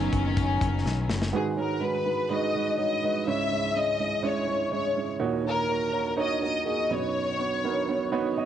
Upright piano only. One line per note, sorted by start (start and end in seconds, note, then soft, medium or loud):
0.00 1.36 F#3 medium
0.00 1.35 B3 soft
0.00 1.33 D#4 medium
1.32 3.23 G#2 soft
1.32 3.23 D#3 soft
1.32 1.52 G#3 medium
1.32 1.52 D#4 medium
1.32 1.52 F#4 medium
1.32 1.52 B4 medium
1.56 1.76 G#3 medium
1.56 1.76 D#4 soft
1.56 1.76 F#4 soft
1.56 1.76 C#5 medium
1.81 2.00 G#3 medium
1.81 2.00 D#4 soft
1.81 2.00 F#4 medium
1.81 2.01 B4 medium
2.05 2.25 G#3 medium
2.05 2.25 D#4 soft
2.05 2.25 F#4 soft
2.05 2.25 B4 medium
2.30 2.49 G#3 medium
2.30 2.49 D#4 medium
2.30 2.49 F#4 medium
2.30 2.49 B4 medium
2.55 2.74 G#3 medium
2.55 2.74 D#4 medium
2.55 2.74 F#4 medium
2.55 2.74 B4 medium
2.78 2.97 G#3 medium
2.78 2.97 D#4 soft
2.78 2.98 F#4 medium
2.78 2.97 C#5 medium
3.03 3.22 G#3 medium
3.03 3.22 D#4 soft
3.03 3.22 F#4 medium
3.03 3.23 B4 medium
3.27 5.17 C#2 medium
3.27 5.17 G#2 soft
3.27 3.46 G#3 medium
3.27 3.46 C#4 medium
3.27 3.46 E4 medium
3.27 3.46 C#5 medium
3.51 3.70 G#3 medium
3.51 3.70 C#4 soft
3.51 3.70 E4 soft
3.51 3.71 C#5 medium
3.75 3.94 G#3 medium
3.75 3.95 C#4 soft
3.75 3.95 E4 soft
3.75 3.95 C#5 medium
3.99 4.18 G#3 medium
3.99 4.19 C#4 soft
3.99 4.19 E4 soft
3.99 4.19 C#5 medium
4.23 4.42 G#3 medium
4.23 4.42 C#4 medium
4.23 4.42 E4 medium
4.23 4.43 C#5 medium
4.47 4.67 G#3 medium
4.47 4.67 C#4 medium
4.47 4.67 E4 soft
4.47 4.67 C#5 medium
4.72 4.91 G#3 medium
4.72 4.91 C#4 medium
4.72 4.91 E4 medium
4.72 4.91 C#5 medium
4.95 5.15 G#3 medium
4.95 5.15 C#4 medium
4.95 5.15 E4 soft
4.95 5.15 C#5 medium
5.19 6.86 D#2 medium
5.19 6.86 A#2 medium
5.19 5.39 A#3 medium
5.19 5.39 D#4 medium
5.19 5.39 F#4 medium
5.19 5.40 C#5 medium
5.44 5.64 A#3 medium
5.44 5.64 D#4 medium
5.44 5.64 F#4 soft
5.44 5.64 C#5 medium
5.68 5.88 A#3 medium
5.68 5.88 D#4 soft
5.68 5.88 F#4 soft
5.68 5.88 C#5 medium
5.93 6.12 A#3 medium
5.93 6.12 D#4 medium
5.93 6.12 F#4 medium
5.93 6.12 C#5 medium
6.17 6.36 A#3 medium
6.17 6.37 D#4 medium
6.17 6.37 F#4 medium
6.17 6.37 C#5 medium
6.42 6.61 A#3 medium
6.42 6.61 D#4 medium
6.42 6.61 F#4 medium
6.42 6.61 A#4 medium
6.65 6.85 A#3 medium
6.65 6.85 D#4 medium
6.65 6.85 F#4 medium
6.65 6.85 G#4 medium
6.90 8.45 B1 medium
6.90 8.45 F#2 soft
6.90 7.29 B3 medium
6.90 7.29 D#4 medium
6.90 7.30 F#4 medium
6.90 7.30 C#5 medium
7.38 7.58 B3 medium
7.38 7.58 D#4 soft
7.38 7.58 F#4 soft
7.38 7.58 C#5 medium
7.64 7.83 B3 medium
7.64 7.83 D#4 medium
7.64 7.83 F#4 medium
7.64 7.83 A#4 medium
7.88 8.07 B3 medium
7.88 8.07 D#4 medium
7.88 8.07 F#4 medium
7.88 8.07 C#5 medium
8.12 8.31 B3 loud
8.12 8.31 D#4 medium
8.12 8.31 F#4 medium
8.12 8.31 C#5 loud
8.37 8.45 B3 medium
8.37 8.45 D#4 medium
8.37 8.45 F#4 medium
8.37 8.45 D#5 medium